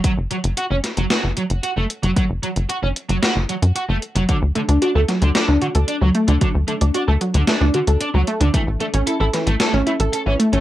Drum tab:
HH |x-xxx-xxx-xxx-xx|x-xxx-xxx-xxx-xx|x-xxx-xxx-xxx-xx|x-xxx-xxx-xxx-xx|
SD |------o-o-------|--------o-------|------o-o-------|--------o-------|
BD |o---------------|o---------------|o---------------|o---------------|

HH |x-xxx-xxx-xxx-xx|
SD |------o-o-------|
BD |o---------------|